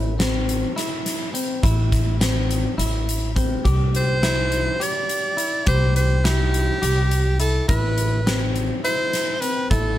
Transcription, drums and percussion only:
0.20 snare loud
0.20 closed hi-hat medium
0.49 closed hi-hat medium
0.78 snare soft
0.78 closed hi-hat medium
1.06 snare soft
1.06 closed hi-hat medium
1.35 closed hi-hat medium
1.63 kick loud
1.63 closed hi-hat medium
1.92 kick medium
1.92 snare soft
1.92 closed hi-hat medium
2.21 snare medium
2.21 closed hi-hat medium
2.51 closed hi-hat medium
2.79 closed hi-hat medium
3.09 closed hi-hat medium
3.36 kick medium
3.36 closed hi-hat medium
3.65 kick medium
3.65 closed hi-hat medium
3.95 closed hi-hat soft
4.23 snare medium
4.23 closed hi-hat medium
4.52 closed hi-hat soft
4.81 closed hi-hat medium
5.09 closed hi-hat medium
5.38 closed hi-hat soft
5.66 kick medium
5.66 closed hi-hat medium
5.96 closed hi-hat medium
6.25 snare medium
6.25 closed hi-hat medium
6.54 closed hi-hat medium
6.83 closed hi-hat medium
7.11 closed hi-hat medium
7.40 closed hi-hat medium
7.69 kick medium
7.69 closed hi-hat medium
7.98 closed hi-hat medium
8.27 snare medium
8.27 closed hi-hat medium
8.56 closed hi-hat soft
8.85 closed hi-hat medium
9.13 snare soft
9.13 closed hi-hat medium
9.42 closed hi-hat soft
9.71 kick loud
9.71 closed hi-hat medium

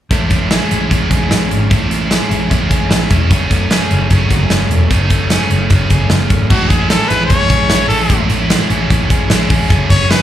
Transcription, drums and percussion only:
0.11 kick medium
0.11 closed hi-hat medium
0.30 kick medium
0.30 closed hi-hat medium
0.51 snare medium
0.51 closed hi-hat medium
0.71 closed hi-hat medium
0.91 kick medium
0.91 closed hi-hat medium
1.11 kick medium
1.11 closed hi-hat medium
1.31 snare medium
1.31 closed hi-hat medium
1.51 closed hi-hat medium
1.71 kick medium
1.71 closed hi-hat medium
1.91 closed hi-hat medium
2.11 snare medium
2.11 closed hi-hat medium
2.31 closed hi-hat medium
2.51 kick medium
2.51 closed hi-hat medium
2.71 kick medium
2.71 closed hi-hat medium
2.91 snare medium
2.91 closed hi-hat medium
3.10 kick medium
3.10 closed hi-hat medium
3.31 kick medium
3.31 closed hi-hat medium
3.51 kick medium
3.51 closed hi-hat medium
3.71 snare medium
3.71 closed hi-hat medium
3.91 closed hi-hat medium
4.10 kick medium
4.10 closed hi-hat medium
4.31 kick medium
4.31 closed hi-hat medium
4.50 snare medium
4.50 closed hi-hat medium
4.71 closed hi-hat medium
4.91 kick medium
4.91 closed hi-hat medium
5.10 kick medium
5.10 closed hi-hat medium
5.30 snare medium
5.30 closed hi-hat loud
5.50 closed hi-hat medium
5.70 kick medium
5.70 closed hi-hat medium
5.90 kick medium
5.90 closed hi-hat medium
6.10 snare medium
6.10 closed hi-hat medium
6.30 kick medium
6.30 closed hi-hat medium
6.50 kick medium
6.50 crash medium
6.70 kick medium
6.70 closed hi-hat medium
6.90 snare loud
6.90 closed hi-hat medium
7.10 closed hi-hat medium
7.30 kick medium
7.30 closed hi-hat medium
7.50 kick medium
7.50 closed hi-hat medium
7.70 snare loud
7.70 closed hi-hat medium
7.90 open hi-hat medium
8.10 kick loud
8.10 closed hi-hat medium
8.30 closed hi-hat medium
8.50 snare loud
8.50 closed hi-hat loud
8.70 closed hi-hat medium
8.90 kick medium
8.90 closed hi-hat medium
9.10 kick medium
9.10 closed hi-hat medium
9.30 snare medium
9.30 closed hi-hat medium
9.50 kick medium
9.50 open hi-hat medium
9.70 kick loud
9.70 closed hi-hat medium
9.90 kick medium
9.90 closed hi-hat medium
10.10 snare loud
10.10 closed hi-hat medium

